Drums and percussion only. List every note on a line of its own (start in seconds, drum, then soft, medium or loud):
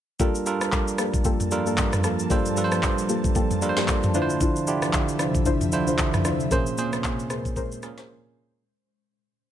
0.20 kick loud
0.20 shaker medium
0.35 shaker medium
0.46 shaker medium
0.61 cross-stick loud
0.61 shaker medium
0.72 kick medium
0.72 clap medium
0.72 shaker medium
0.88 shaker medium
0.98 cross-stick loud
0.98 shaker medium
1.14 kick loud
1.14 shaker medium
1.25 kick loud
1.25 shaker medium
1.40 mid tom medium
1.40 shaker medium
1.51 shaker medium
1.66 shaker medium
1.78 kick medium
1.78 clap loud
1.78 shaker medium
1.93 cross-stick medium
1.93 mid tom medium
1.93 shaker medium
2.04 cross-stick medium
2.04 shaker loud
2.19 shaker soft
2.30 kick loud
2.30 shaker medium
2.46 shaker medium
2.57 shaker medium
2.72 cross-stick loud
2.72 shaker medium
2.83 kick medium
2.83 clap medium
2.83 shaker medium
2.98 shaker medium
3.09 shaker medium
3.24 kick loud
3.24 shaker medium
3.35 kick loud
3.35 shaker medium
3.51 mid tom medium
3.51 shaker medium
3.62 shaker medium
3.77 snare medium
3.77 shaker medium
3.88 kick medium
3.88 clap loud
3.88 shaker medium
4.03 mid tom loud
4.03 shaker medium
4.14 shaker loud
4.30 shaker soft
4.41 kick loud
4.41 shaker medium
4.56 shaker medium
4.67 shaker medium
4.82 cross-stick loud
4.82 shaker medium
4.93 kick medium
4.93 clap medium
4.93 shaker medium
5.09 shaker medium
5.19 cross-stick loud
5.19 shaker medium
5.35 kick loud
5.35 shaker medium
5.46 kick loud
5.46 shaker medium
5.61 mid tom medium
5.61 shaker medium
5.72 shaker medium
5.87 shaker medium
5.98 kick medium
5.98 clap loud
5.98 shaker medium
6.14 cross-stick medium
6.14 mid tom medium
6.14 shaker medium
6.25 cross-stick medium
6.25 shaker loud
6.40 shaker soft
6.51 kick loud
6.51 shaker medium
6.66 shaker medium
6.78 shaker medium
6.93 cross-stick loud
6.93 shaker medium
7.04 kick medium
7.04 clap medium
7.04 shaker medium
7.19 shaker medium
7.30 cross-stick loud
7.30 shaker medium
7.45 kick loud
7.45 shaker medium
7.56 kick loud
7.56 shaker medium
7.72 shaker medium
7.83 cross-stick loud
7.83 shaker medium
7.98 snare medium
7.98 shaker medium